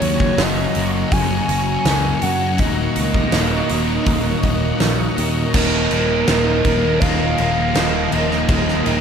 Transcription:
Already playing: distorted electric guitar F#2 C#4, twelve-string acoustic guitar F#2 C#4, overdriven electric guitar F#2 C#3 F#3 A#3 C#4 F#4, string machine F#4 G#5 A#5 C#6, soft synth lead C#5
0.01 picked electric bass D#2, distorted electric guitar C#3 F#3, open hi-hat
0.20 kick
0.38 picked electric bass F#1, distorted electric guitar F#2 C#3 F#3, twelve-string acoustic guitar F#3, snare, open hi-hat
0.42 soft synth lead D#5
0.75 picked electric bass F#1, distorted electric guitar C#3 F#3, twelve-string acoustic guitar A#3, open hi-hat
1.12 picked electric bass F#1, distorted electric guitar F#2 C#3 F#3, twelve-string acoustic guitar C#4, soft synth lead G#5, kick, open hi-hat
1.49 picked electric bass F#1, distorted electric guitar C#3 F#3, twelve-string acoustic guitar F#4, open hi-hat
1.85 picked electric bass C#2, distorted electric guitar F#2 C#3 F#3, twelve-string acoustic guitar A#3, snare, open hi-hat
2.22 picked electric bass F#2, twelve-string acoustic guitar F#3, distorted electric guitar F#3, soft synth lead F#5, open hi-hat
2.26 distorted electric guitar C#3
2.58 picked electric bass D#1, overdriven electric guitar D#2 A#2 D#3 F#3 A#3 D#4, distorted electric guitar D#2 A#2, twelve-string acoustic guitar D#2, soft synth lead D#5, string machine D#5 C#6, kick, open hi-hat
2.62 distorted electric guitar D#3
2.96 picked electric bass C#2, distorted electric guitar A#2 D#3, open hi-hat
3.14 kick
3.32 picked electric bass D#1, distorted electric guitar D#2 A#2, twelve-string acoustic guitar D#3, snare, open hi-hat
3.36 distorted electric guitar D#3
3.69 picked electric bass D#1, distorted electric guitar D#3, twelve-string acoustic guitar F#3, open hi-hat
3.74 distorted electric guitar A#2
4.06 picked electric bass D#1, distorted electric guitar D#2 A#2 D#3, twelve-string acoustic guitar A#3, kick, open hi-hat
4.43 picked electric bass D#1, distorted electric guitar D#3, twelve-string acoustic guitar D#4, kick, open hi-hat
4.48 distorted electric guitar A#2
4.80 picked electric bass A#1, distorted electric guitar D#2 A#2 D#3, twelve-string acoustic guitar F#3, snare, open hi-hat
5.18 picked electric bass D#2, distorted electric guitar A#2 D#3, twelve-string acoustic guitar D#3, open hi-hat
5.53 picked electric bass D#1, overdriven electric guitar D#2 A#2 D#3 A#3 D#4, distorted electric guitar D#2 A#2, twelve-string acoustic guitar D#2, string machine F3 A#4 D#5 A#5, soft synth lead A#4, kick, crash
5.57 distorted electric guitar D#3
5.90 picked electric bass D#1, overdriven electric guitar A#2 D#3 A#3 D#4, twelve-string acoustic guitar D#4, crash
6.08 distorted electric guitar D#3, overdriven electric guitar D#3 A#3 D#4
6.12 distorted electric guitar A#2
6.26 picked electric bass D#1, overdriven electric guitar D#2 A#2 D#3 A#3 D#4, distorted electric guitar D#2 A#2, twelve-string acoustic guitar A#3, snare, crash
6.30 distorted electric guitar D#3
6.46 overdriven electric guitar D#3 A#3 D#4
6.64 picked electric bass D#1, overdriven electric guitar A#2 D#3 A#3 D#4, twelve-string acoustic guitar D#3, kick, crash
6.83 overdriven electric guitar D#3 A#3 D#4, muted distorted electric guitar stroke
7.00 picked electric bass D#1, distorted electric guitar D#2 A#2, twelve-string acoustic guitar D#4, soft synth lead F5, kick, crash
7.04 distorted electric guitar D#3
7.20 distorted electric guitar A#2 D#3, overdriven electric guitar D#3 A#3 D#4
7.38 picked electric bass D#1, distorted electric guitar D#2 A#2, overdriven electric guitar A#2 D#3 A#3 D#4, twelve-string acoustic guitar D#3, crash
7.42 distorted electric guitar D#3
7.58 muted distorted electric guitar stroke
7.74 picked electric bass D#1, overdriven electric guitar D#2 A#2 D#3 A#3 D#4, distorted electric guitar D#2 A#2 D#3, twelve-string acoustic guitar A#2, snare, crash
8.12 picked electric bass D#1, distorted electric guitar D#2 A#2 D#3, overdriven electric guitar A#2 D#3 A#3 D#4, twelve-string acoustic guitar A#3, soft synth lead D#5, crash
8.29 distorted electric guitar D#3, overdriven electric guitar D#3 A#3 D#4, snare
8.33 distorted electric guitar A#2
8.47 picked electric bass D#1, overdriven electric guitar D#2 A#2 D#3 A#3, distorted electric guitar D#2 A#2 D#3, twelve-string acoustic guitar D#2, string machine G#5, kick, crash
8.51 overdriven electric guitar D#4
8.68 snare
8.84 picked electric bass D#1, overdriven electric guitar A#2 D#3 A#3 D#4, twelve-string acoustic guitar D#4, crash

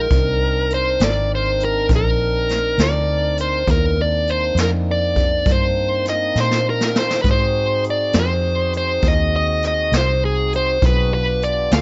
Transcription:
Already playing: lead electric guitar A#4
0.10 fingered electric bass C2, tonewheel organ C4 D4 D#4 A#4, kick, closed hi-hat
0.70 lead electric guitar C5, closed hi-hat
1.00 fingered electric bass G#1, snare, closed hi-hat
1.04 lead electric guitar D5
1.35 lead electric guitar C5
1.60 closed hi-hat
1.65 lead electric guitar A#4
1.89 fingered electric bass A#1, kick, closed hi-hat
1.96 lead electric guitar A#4
2.49 snare, closed hi-hat
2.78 fingered electric bass D2, snare, closed hi-hat
2.83 lead electric guitar D5
3.38 lead electric guitar C5, closed hi-hat
3.67 fingered electric bass D#2, tonewheel organ B3 C#4 D#4 E4, lead electric guitar A#4, kick, closed hi-hat
3.97 tonewheel organ A#3 C4 D4 D#4
4.02 lead electric guitar D5
4.27 lead electric guitar C5, closed hi-hat
4.55 fingered electric bass F2, snare, closed hi-hat
4.61 lead electric guitar A#4
4.91 lead electric guitar D5
5.16 kick, closed hi-hat
5.46 fingered electric bass G2, kick, closed hi-hat
5.52 lead electric guitar C5
6.05 lead electric guitar D#5, snare, closed hi-hat
6.36 fingered electric bass A#2, snare
6.40 lead electric guitar C5
6.51 snare
6.70 lead electric guitar A#4
6.81 snare
6.96 lead electric guitar C5, snare
7.11 snare
7.22 fingered electric bass G#2, tonewheel organ C4 D#4 F#4 G#4, lead electric guitar B4, kick, closed hi-hat
7.31 lead electric guitar C5
7.84 closed hi-hat
7.90 lead electric guitar D5
8.13 fingered electric bass F2, snare, closed hi-hat
8.19 lead electric guitar C5
8.73 closed hi-hat
8.77 lead electric guitar C5
9.02 fingered electric bass D#2, kick, closed hi-hat
9.08 lead electric guitar D#5
9.36 lead electric guitar D#5
9.63 snare, closed hi-hat
9.67 lead electric guitar D#5
9.92 fingered electric bass C2, snare, closed hi-hat
9.96 lead electric guitar C5
10.25 lead electric guitar G#4
10.53 lead electric guitar C5, closed hi-hat
10.82 fingered electric bass B1, tonewheel organ C4 D#4 F#4 G#4, kick, closed hi-hat
10.86 lead electric guitar B4
11.11 tonewheel organ B3 D4 F4 G4, lead electric guitar B4
11.42 lead electric guitar D5, closed hi-hat
11.71 fingered electric bass D2, lead electric guitar F5, snare, closed hi-hat

